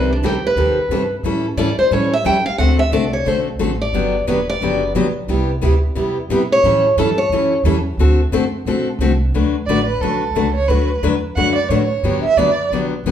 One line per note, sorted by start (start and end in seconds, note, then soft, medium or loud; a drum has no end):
0.00 0.21 C2 medium
0.00 0.10 C3 medium
0.00 0.10 D#3 medium
0.00 0.10 G3 medium
0.00 0.10 C4 medium
0.00 0.10 G4 medium
0.00 0.11 A4 medium
0.00 0.10 B4 medium
0.13 0.24 D4 soft
0.23 0.55 D2 medium
0.23 0.34 C3 medium
0.23 0.34 D#3 medium
0.23 0.34 G3 medium
0.23 0.34 C4 medium
0.23 0.34 G4 medium
0.23 0.44 G4 medium
0.23 0.35 A4 medium
0.47 1.15 B4 medium
0.55 0.75 D#2 medium
0.55 0.77 C3 medium
0.55 0.77 D#3 medium
0.55 0.78 G3 medium
0.55 0.78 C4 medium
0.55 0.78 G4 medium
0.55 0.78 A4 medium
0.75 muted upright bass stroke soft
0.89 1.22 G2 medium
0.89 1.02 C3 medium
0.89 1.02 D#3 medium
0.89 1.02 G3 medium
0.89 1.02 C4 medium
0.89 1.02 G4 medium
0.89 1.02 A4 medium
1.23 1.56 A2 medium
1.23 1.45 E3 medium
1.23 1.45 G3 medium
1.23 1.45 C#4 medium
1.23 1.45 E4 medium
1.23 1.46 A4 medium
1.57 1.76 G#2 medium
1.57 1.68 E3 medium
1.57 1.69 G3 medium
1.57 1.69 C#4 medium
1.57 1.69 E4 medium
1.57 1.69 A4 loud
1.57 1.77 D5 medium
1.78 1.91 C5 medium
1.78 muted upright bass stroke soft
1.91 2.24 A2 medium
1.91 2.12 E3 medium
1.91 2.12 G3 medium
1.91 2.12 C#4 medium
1.91 2.12 E4 medium
1.91 2.12 A4 medium
1.91 2.12 C#5 medium
2.13 2.25 E5 loud
2.25 2.44 E2 medium
2.25 2.36 E3 medium
2.25 2.36 G3 medium
2.25 2.36 C#4 medium
2.25 2.36 E4 medium
2.25 2.36 A4 loud
2.25 2.45 G5 medium
2.45 2.58 F5 loud
2.45 muted upright bass stroke soft
2.58 2.91 D2 medium
2.58 2.79 D3 medium
2.58 2.80 A3 medium
2.58 2.80 C4 medium
2.58 2.80 F#4 medium
2.58 2.80 A4 medium
2.58 2.78 F#5 medium
2.79 2.92 E5 loud
2.92 3.25 C2 medium
2.92 3.03 D3 medium
2.92 3.04 A3 loud
2.92 3.04 C4 medium
2.92 3.04 F#4 medium
2.92 3.04 A4 medium
2.92 3.13 D5 medium
3.13 3.28 C#5 medium
3.25 3.58 B1 medium
3.25 3.47 D3 medium
3.25 3.47 A3 medium
3.25 3.47 C4 medium
3.25 3.47 F#4 medium
3.25 3.48 A4 medium
3.25 3.40 C5 medium
3.59 3.92 A1 medium
3.59 3.71 D3 medium
3.59 3.71 A3 medium
3.59 3.71 C4 medium
3.59 3.71 F#4 medium
3.59 3.71 A4 medium
3.82 4.25 D5 medium
3.93 4.26 G1 medium
3.93 4.14 D3 medium
3.93 4.15 F#3 medium
3.93 4.15 B3 medium
3.93 4.15 D4 medium
3.93 4.15 G4 medium
4.27 4.60 E1 medium
4.27 4.38 D3 medium
4.27 4.39 F#3 medium
4.27 4.38 B3 medium
4.27 4.39 D4 medium
4.27 4.39 G4 medium
4.27 4.48 B4 medium
4.49 4.92 D5 loud
4.61 4.93 F#1 medium
4.61 4.82 D3 medium
4.61 4.82 F#3 medium
4.61 4.82 B3 medium
4.61 4.83 D4 medium
4.61 4.83 G4 medium
4.94 5.27 B1 medium
4.94 5.06 D3 medium
4.94 5.06 F#3 medium
4.94 5.06 B3 medium
4.94 5.06 D4 medium
4.94 5.06 G4 loud
5.28 5.61 C2 medium
5.28 5.49 C3 medium
5.28 5.49 G3 medium
5.28 5.49 B3 medium
5.28 5.49 E4 medium
5.28 5.50 G4 medium
5.62 5.95 D2 medium
5.62 5.73 C3 medium
5.62 5.73 G3 medium
5.62 5.73 B3 medium
5.62 5.73 E4 medium
5.62 5.74 G4 medium
5.95 6.28 E2 medium
5.95 6.16 C3 medium
5.95 6.17 G3 medium
5.95 6.17 B3 medium
5.95 6.17 E4 medium
5.95 6.17 G4 medium
6.29 6.62 B2 medium
6.29 6.41 C3 medium
6.29 6.41 G3 medium
6.29 6.41 B3 medium
6.29 6.41 E4 medium
6.29 6.41 G4 medium
6.52 6.95 C#5 loud
6.63 6.96 A2 medium
6.63 6.84 E3 medium
6.63 6.84 G3 medium
6.63 6.85 C#4 medium
6.63 6.85 E4 medium
6.63 6.85 A4 medium
6.96 7.29 G2 medium
6.96 7.08 E3 medium
6.96 7.08 G3 medium
6.96 7.08 C#4 loud
6.96 7.09 E4 medium
6.96 7.18 A4 medium
6.96 7.09 A4 loud
7.18 7.61 C#5 medium
7.29 7.63 F#2 medium
7.29 7.52 E3 medium
7.29 7.52 G3 medium
7.29 7.52 C#4 medium
7.33 7.53 E4 medium
7.33 7.53 A4 medium
7.63 7.97 E2 medium
7.63 7.76 E3 medium
7.63 7.76 G3 loud
7.63 7.76 C#4 medium
7.63 7.76 E4 medium
7.63 7.76 A4 medium
7.97 8.31 D2 medium
7.97 8.19 D3 medium
7.97 8.19 A3 medium
7.97 8.20 C4 medium
7.97 8.20 F#4 medium
7.97 8.20 A4 medium
8.32 8.64 F#2 medium
8.32 8.43 D3 medium
8.32 8.43 A3 medium
8.32 8.44 C4 medium
8.32 8.44 F#4 loud
8.32 8.44 A4 loud
8.65 8.98 B1 medium
8.65 8.87 D3 medium
8.65 8.87 A3 medium
8.65 8.87 C4 medium
8.65 8.87 F#4 medium
8.65 8.88 A4 medium
8.99 9.32 C2 loud
8.99 9.11 D3 medium
8.99 9.11 A3 medium
8.99 9.11 C4 medium
8.99 9.12 F#4 medium
8.99 9.12 A4 medium
9.32 9.66 D2 medium
9.32 9.54 D3 medium
9.32 9.55 F#3 medium
9.32 9.55 A3 medium
9.32 9.55 D4 medium
9.32 9.55 F#4 medium
9.32 9.55 B4 medium
9.66 9.99 A1 medium
9.66 9.79 D3 medium
9.66 9.79 F#3 medium
9.66 9.79 A3 medium
9.66 9.79 D4 medium
9.66 9.79 F#4 medium
9.66 9.79 B4 medium
9.66 9.86 D5 medium
9.86 10.02 B4 medium
10.00 10.33 B1 medium
10.00 10.22 D3 medium
10.00 10.22 F#3 medium
10.00 10.22 A3 medium
10.00 10.23 D4 medium
10.00 10.23 F#4 medium
10.00 10.54 A4 medium
10.00 10.23 B4 medium
10.34 10.67 C#2 medium
10.34 10.46 D3 medium
10.34 10.46 F#3 medium
10.34 10.46 A3 medium
10.34 10.46 D4 medium
10.34 10.46 F#4 medium
10.34 10.47 B4 medium
10.54 10.70 C#5 medium
10.68 11.01 D2 medium
10.68 10.89 D3 medium
10.68 10.90 F#3 medium
10.68 10.90 A3 medium
10.68 10.90 D4 medium
10.68 10.90 F#4 medium
10.68 11.02 B4 medium
10.68 10.90 B4 medium
11.02 11.35 E2 medium
11.02 11.14 D3 medium
11.02 11.14 F#3 medium
11.02 11.14 A3 medium
11.02 11.14 D4 medium
11.02 11.14 F#4 medium
11.02 11.14 B4 medium
11.36 11.69 F#2 medium
11.36 11.57 D3 medium
11.36 11.57 F#3 medium
11.36 11.57 A3 medium
11.36 11.57 D4 medium
11.36 11.58 F#4 medium
11.36 11.58 B4 medium
11.36 11.55 F#5 loud
11.55 11.70 D5 medium
11.69 12.02 A2 medium
11.69 11.81 D3 medium
11.69 11.81 F#3 medium
11.69 11.81 A3 medium
11.69 11.81 D4 medium
11.69 11.82 F#4 medium
11.69 11.82 B4 loud
11.69 12.23 C#5 medium
12.03 12.22 G2 medium
12.03 12.24 D3 medium
12.03 12.25 F#3 medium
12.03 12.25 B3 medium
12.03 12.25 D4 medium
12.03 12.25 G4 medium
12.23 12.39 E5 medium
12.23 muted upright bass stroke soft
12.37 12.70 F#2 medium
12.37 12.49 D3 medium
12.37 12.49 F#3 medium
12.37 12.49 B3 medium
12.37 12.49 D4 loud
12.37 12.49 G4 medium
12.37 12.71 D5 medium
12.71 13.03 B1 medium
12.71 12.93 D3 medium
12.71 12.93 F#3 medium
12.71 12.93 B3 medium
12.71 12.93 D4 medium
12.71 12.93 G4 medium
13.04 13.11 D2 medium
13.04 13.11 D3 medium
13.04 13.11 F#3 medium
13.04 13.11 B3 medium
13.04 13.11 D4 medium
13.04 13.11 G4 medium